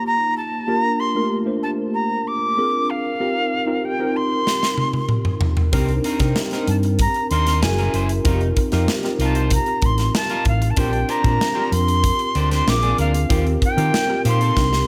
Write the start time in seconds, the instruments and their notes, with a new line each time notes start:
Already playing: tine electric piano A#3 D#4 F4 G4 C5
0.06 flute A#5
0.37 flute A5
0.67 tine electric piano A#3 D4 F4 G4 A#4, flute A#5
1.00 flute C6
1.15 tine electric piano A3 D4 F4 G4 A#4
1.45 tine electric piano A3 D4 F4 G4 C5
1.63 flute A5
1.94 flute A#5
2.27 flute D6
2.57 tine electric piano C4 D4 F4 G#4 A#4
2.90 flute F5
3.20 tine electric piano C4 D#4 F4 G4 A#4
3.66 tine electric piano C4 D#4 F4 G4 A#4
3.85 flute G5
3.99 tine electric piano C4 D#4 F4 G4 A#4
4.16 flute C6
4.47 snare
4.63 snare
4.78 high tom
4.93 high tom
5.09 mid tom
5.25 mid tom
5.41 floor tom
5.57 floor tom
5.73 fingered electric bass C2, tine electric piano C4 D4 D#4 G4 A#4, clean electric guitar C4 D#4 A#4, kick, closed hi-hat
5.88 muted clean electric guitar stroke, closed hi-hat
6.04 clean electric guitar C4 D#4 A#4, closed hi-hat
6.20 fingered electric bass C3, tine electric piano C4 D4 D#4 G4 A#4, clean electric guitar C4 D#4 A#4, kick, snare, closed hi-hat
6.36 muted clean electric guitar stroke, snare
6.51 tine electric piano C4 D4 D#4 G4 A#4, clean electric guitar C4 D#4 A#4, snare, closed hi-hat
6.68 fingered electric bass G2, flute A5, muted clean electric guitar stroke, closed hi-hat
6.83 muted clean electric guitar stroke, closed hi-hat
6.99 flute A#5, muted clean electric guitar stroke, kick, closed hi-hat
7.14 muted clean electric guitar stroke, closed hi-hat
7.30 fingered electric bass D#2, clean electric guitar C4 D#4 A#4, flute C6, closed hi-hat
7.47 clean electric guitar C4 D#4 A#4, snare, closed hi-hat
7.62 fingered electric bass F#1, tine electric piano C#4 E4 F#4 G#4 A#4, flute G#5, snare
7.78 clean electric guitar E4 G#4 A#4, closed hi-hat
7.94 fingered electric bass F#1, clean electric guitar E4 G#4 C5, closed hi-hat
8.09 muted clean electric guitar stroke, closed hi-hat
8.24 fingered electric bass F1, tine electric piano C4 D#4 F4 G4 A#4, clean electric guitar D#4 F4 A#4, kick, closed hi-hat
8.41 muted clean electric guitar stroke, closed hi-hat
8.57 muted clean electric guitar stroke, kick, closed hi-hat
8.72 fingered electric bass F2, tine electric piano C4 D#4 F4 G4 A#4, clean electric guitar D#4 F4 A#4, snare, closed hi-hat
8.88 muted clean electric guitar stroke, snare
9.03 tine electric piano C4 D#4 F4 G4 A#4, muted clean electric guitar stroke, snare, closed hi-hat
9.19 fingered electric bass C2, clean electric guitar D#4 F4 A#4, closed hi-hat
9.24 flute A5
9.35 clean electric guitar D#4 F4 C5, closed hi-hat
9.50 flute A#5, muted clean electric guitar stroke, kick, closed hi-hat
9.66 muted clean electric guitar stroke, closed hi-hat
9.82 fingered electric bass A1, flute C6, kick, closed hi-hat
9.98 muted clean electric guitar stroke, snare, closed hi-hat
10.15 flute A5, muted clean electric guitar stroke, snare
10.29 clean electric guitar D#4 F4 A#4, closed hi-hat
10.45 fingered electric bass A1, flute F5, muted clean electric guitar stroke, kick, closed hi-hat
10.62 muted clean electric guitar stroke, closed hi-hat
10.70 flute A5
10.77 fingered electric bass A#1, tine electric piano C4 D4 F4 G4 A#4, clean electric guitar D4 G4 C5, flute G5, kick, closed hi-hat
10.93 muted clean electric guitar stroke, closed hi-hat
11.09 clean electric guitar D4 G4 C5, flute A#5, closed hi-hat
11.24 fingered electric bass A#2, tine electric piano C4 D4 F4 G4 A#4, clean electric guitar D4 G4 C5, kick, closed hi-hat
11.40 muted clean electric guitar stroke, snare
11.55 tine electric piano C4 D4 F4 G4 A#4, clean electric guitar D4 G4 C5
11.72 fingered electric bass F2, flute C6, muted clean electric guitar stroke, closed hi-hat
11.88 muted clean electric guitar stroke, closed hi-hat
12.03 muted clean electric guitar stroke, kick, closed hi-hat
12.19 muted clean electric guitar stroke, closed hi-hat
12.35 fingered electric bass D2, clean electric guitar D4 G4 C5, closed hi-hat
12.51 clean electric guitar D4 G4 C5, flute C6, snare, closed hi-hat
12.67 fingered electric bass A#1, tine electric piano C4 D4 F4 G#4 A#4, flute D6, muted clean electric guitar stroke, snare
12.83 clean electric guitar A#3 D4 G#4, closed hi-hat
12.98 fingered electric bass D2, clean electric guitar A#3 D4 A#4, flute F5, closed hi-hat
13.14 muted clean electric guitar stroke, closed hi-hat
13.29 fingered electric bass D#2, tine electric piano C4 D#4 F4 G4 A#4, clean electric guitar C4 F4 G4, kick, closed hi-hat
13.46 muted clean electric guitar stroke, closed hi-hat
13.62 flute G5, muted clean electric guitar stroke, kick, closed hi-hat
13.76 fingered electric bass D#3, tine electric piano C4 D#4 F4 G4 A#4, clean electric guitar C4 F4 G4, closed hi-hat
13.94 muted clean electric guitar stroke, snare
14.08 tine electric piano C4 D#4 F4 G4 A#4, muted clean electric guitar stroke
14.25 fingered electric bass A#2, clean electric guitar C4 F4 G4, flute C6, closed hi-hat
14.41 clean electric guitar C4 F4 A4, closed hi-hat
14.56 fingered electric bass C2, tine electric piano C4 D4 D#4 G4 A#4, kick, snare
14.73 muted clean electric guitar stroke, snare